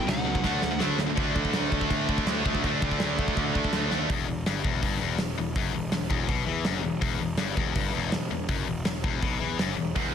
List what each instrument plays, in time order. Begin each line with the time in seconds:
Already playing: lead electric guitar G5
0.07 picked electric bass C#2, distorted electric guitar B2 F#3, lead electric guitar D#4 F#5, snare, crash
0.25 distorted electric guitar B2 F#3
0.35 distorted electric guitar B2 F#3, kick
0.43 picked electric bass D2, distorted electric guitar D3 A3 D4, kick, snare
0.62 picked electric bass D2, distorted electric guitar D3 A3, snare
0.71 distorted electric guitar D3 A3
0.79 picked electric bass D2, distorted electric guitar D3 A3 D4, snare
0.98 distorted electric guitar D3 A3, snare
1.07 distorted electric guitar D3 A3
1.16 picked electric bass D2, distorted electric guitar D3 A3 D4, kick, china
1.36 picked electric bass D2, kick
1.45 kick
1.53 picked electric bass D2, snare, china
1.72 picked electric bass D2, kick
1.81 kick
1.90 picked electric bass D2, kick, china
2.08 distorted electric guitar D3 A3 D4, kick
2.18 kick
2.27 picked electric bass D2, distorted electric guitar D3 A3, snare, china
2.31 distorted electric guitar D4
2.44 picked electric bass D2, distorted electric guitar D3 A3 D4, kick
2.55 kick
2.63 picked electric bass D2, distorted electric guitar D3 A3 D4, kick, china
2.82 picked electric bass D2, kick
2.91 kick
3.00 picked electric bass D2, snare, china
3.19 picked electric bass D2, kick
3.28 kick
3.37 picked electric bass D2, kick, china
3.54 distorted electric guitar D3 A3 D4, kick
3.64 kick
3.73 picked electric bass D2, distorted electric guitar D3 A3, snare, china
3.77 distorted electric guitar D4
3.91 picked electric bass D#2, distorted electric guitar D3 A3 D4, snare
4.10 picked electric bass E1, distorted electric guitar E2, kick, open hi-hat
4.28 picked electric bass E1, distorted electric guitar E2
4.46 picked electric bass G1, distorted electric guitar G2, snare, open hi-hat
4.64 picked electric bass E1, distorted electric guitar E2, kick
4.82 picked electric bass G1, distorted electric guitar G2, kick, open hi-hat
5.01 picked electric bass E1, distorted electric guitar E2
5.19 picked electric bass E1, distorted electric guitar E2, snare, open hi-hat
5.38 picked electric bass E1, distorted electric guitar E2
5.56 picked electric bass F#1, distorted electric guitar F#2, kick, open hi-hat
5.74 picked electric bass E1, distorted electric guitar E2
5.92 picked electric bass E1, distorted electric guitar E2, snare, open hi-hat
6.10 picked electric bass E1, distorted electric guitar E2, kick
6.29 picked electric bass B1, distorted electric guitar B2, kick, open hi-hat
6.46 picked electric bass E2, distorted electric guitar E3
6.65 picked electric bass F#1, distorted electric guitar F#2, snare, open hi-hat
6.83 picked electric bass E1, distorted electric guitar E2
7.01 picked electric bass E1, distorted electric guitar E2, kick, open hi-hat
7.20 picked electric bass E1, distorted electric guitar E2
7.38 picked electric bass G1, distorted electric guitar G2, snare, open hi-hat
7.56 picked electric bass E1, distorted electric guitar E2, kick
7.75 picked electric bass G1, distorted electric guitar G2, kick, open hi-hat
7.94 picked electric bass E1, distorted electric guitar E2
8.12 picked electric bass E1, distorted electric guitar E2, snare, open hi-hat
8.30 picked electric bass E1, distorted electric guitar E2
8.49 picked electric bass F#1, distorted electric guitar F#2, kick, open hi-hat
8.67 picked electric bass E1, distorted electric guitar E2
8.85 picked electric bass E1, distorted electric guitar E2, snare, open hi-hat
9.04 picked electric bass E1, distorted electric guitar E2, kick
9.21 picked electric bass B1, distorted electric guitar B2, kick, open hi-hat
9.40 picked electric bass E2, distorted electric guitar E3
9.58 picked electric bass F#1, distorted electric guitar F#2, snare, open hi-hat
9.77 picked electric bass E1, distorted electric guitar E2
9.96 picked electric bass E1, distorted electric guitar E2, kick, open hi-hat